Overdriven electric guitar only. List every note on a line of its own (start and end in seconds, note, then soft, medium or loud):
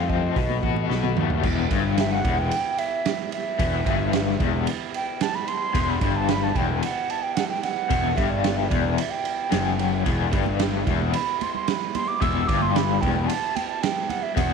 0.00 0.36 F2 medium
0.00 0.36 A3 medium
0.00 0.36 C4 medium
0.09 0.36 F3 medium
0.36 1.44 B2 medium
0.63 1.44 F#4 medium
0.90 1.44 B3 medium
1.16 1.44 A3 medium
1.43 1.69 E2 medium
1.71 2.24 G2 medium
2.25 2.51 E2 loud
3.59 3.86 E2 medium
3.86 4.39 G2 loud
4.39 4.66 E2 medium
5.74 6.00 E2 medium
6.01 6.54 G2 medium
6.55 6.81 E2 loud
7.90 8.16 E2 medium
8.17 8.70 G2 medium
8.70 8.97 E2 loud
9.51 10.05 F#2 medium
10.05 10.32 E2 loud
10.32 10.86 G2 loud
10.87 11.13 E2 loud
12.22 12.48 E2 loud
12.49 13.02 G2 loud
13.02 13.29 E2 loud
14.37 14.53 E2 medium